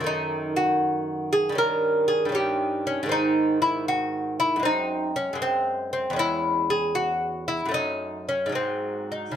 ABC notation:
X:1
M:12/8
L:1/8
Q:3/8=78
K:G#phr
V:1 name="Lute"
D2 F3 G ^A2 G =G2 C | D2 E F2 E D2 C ^B,2 B, | E2 G F2 E D2 C ^B,2 D |]
V:2 name="Lute" clef=bass
[F,,D,A,]6 [=G,,D,C]3 [G,,D,C]3 | [G,,D,^B,]6 [F,,G,B,]3 [F,,G,]3 | [E,,G,C]6 [F,,A,C]3 [G,,F,G,]3 |]